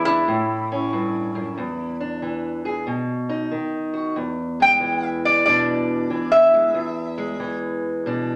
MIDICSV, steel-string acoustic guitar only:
0, 0, Header, 1, 2, 480
1, 0, Start_track
1, 0, Tempo, 646552
1, 1175, Time_signature, 4, 2, 24, 8
1, 6206, End_track
2, 0, Start_track
2, 0, Title_t, "Steel-string acoustic guitar"
2, 0, Program_c, 0, 25
2, 0, Note_on_c, 0, 40, 71
2, 0, Note_on_c, 0, 52, 63
2, 0, Note_on_c, 0, 56, 56
2, 0, Note_on_c, 0, 68, 64
2, 47, Note_on_c, 0, 62, 55
2, 193, Note_off_c, 0, 52, 0
2, 195, Note_off_c, 0, 56, 0
2, 196, Note_off_c, 0, 62, 0
2, 203, Note_off_c, 0, 68, 0
2, 207, Note_on_c, 0, 45, 77
2, 214, Note_off_c, 0, 40, 0
2, 533, Note_on_c, 0, 61, 54
2, 690, Note_on_c, 0, 43, 58
2, 1000, Note_off_c, 0, 43, 0
2, 1003, Note_on_c, 0, 42, 61
2, 1156, Note_off_c, 0, 61, 0
2, 1166, Note_off_c, 0, 42, 0
2, 1169, Note_off_c, 0, 45, 0
2, 1169, Note_on_c, 0, 40, 69
2, 1488, Note_on_c, 0, 62, 55
2, 1650, Note_on_c, 0, 52, 58
2, 1969, Note_on_c, 0, 68, 62
2, 2111, Note_off_c, 0, 52, 0
2, 2113, Note_off_c, 0, 62, 0
2, 2114, Note_off_c, 0, 68, 0
2, 2130, Note_off_c, 0, 40, 0
2, 2130, Note_on_c, 0, 47, 68
2, 2445, Note_on_c, 0, 63, 57
2, 2609, Note_on_c, 0, 51, 57
2, 2611, Note_off_c, 0, 47, 0
2, 2923, Note_on_c, 0, 66, 58
2, 3070, Note_off_c, 0, 66, 0
2, 3071, Note_off_c, 0, 51, 0
2, 3072, Note_off_c, 0, 63, 0
2, 3090, Note_on_c, 0, 40, 71
2, 3416, Note_on_c, 0, 56, 59
2, 3564, Note_on_c, 0, 52, 64
2, 4059, Note_on_c, 0, 47, 67
2, 4062, Note_on_c, 0, 62, 61
2, 4527, Note_off_c, 0, 52, 0
2, 4530, Note_on_c, 0, 52, 61
2, 4538, Note_off_c, 0, 47, 0
2, 4843, Note_off_c, 0, 56, 0
2, 4852, Note_on_c, 0, 56, 58
2, 4996, Note_off_c, 0, 40, 0
2, 4997, Note_off_c, 0, 56, 0
2, 5000, Note_off_c, 0, 62, 0
2, 5005, Note_on_c, 0, 40, 76
2, 5328, Note_on_c, 0, 56, 57
2, 5488, Note_off_c, 0, 52, 0
2, 5491, Note_on_c, 0, 52, 63
2, 5984, Note_on_c, 0, 47, 63
2, 5992, Note_on_c, 0, 62, 65
2, 6206, Note_off_c, 0, 40, 0
2, 6206, Note_off_c, 0, 47, 0
2, 6206, Note_off_c, 0, 52, 0
2, 6206, Note_off_c, 0, 56, 0
2, 6206, Note_off_c, 0, 62, 0
2, 6206, End_track
0, 0, End_of_file